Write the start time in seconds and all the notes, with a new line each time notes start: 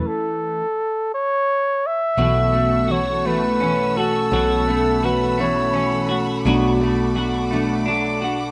Already playing: E3 A3 C#4
0.07 A4
1.14 C#5
1.86 E5
2.17 B1 B2 E3 A3 C#4 F#4 A4 F#5 C#6 E6
2.53 A3 C#4 F#4
2.89 E3 A3 C#4 F#4 C#5
3.25 B2 E3 A3 C#4 F#4 B4
3.61 E3 A3 C#4 F#4
3.96 A3 C#4 F#4 A4
4.30 B1 B2 E3 A3 C#4 F#4 B5
4.67 A3 C#4 F#4
5.02 E3 A3 C#4 F#4 B4
5.38 B2 E3 A3 C#4 F#4 C#5
5.74 E3 A3 C#4 F#4
6.09 A3 C#4 F#4
6.44 B1 B2 F#3 A3 D4 F#4 D6
6.81 A3 D4 F#4
7.16 F#3 A3 D4 F#4
7.52 B2 F#3 A3 D4 F#4
7.87 F#3 A3 D4 F#4
8.22 A3 D4 F#4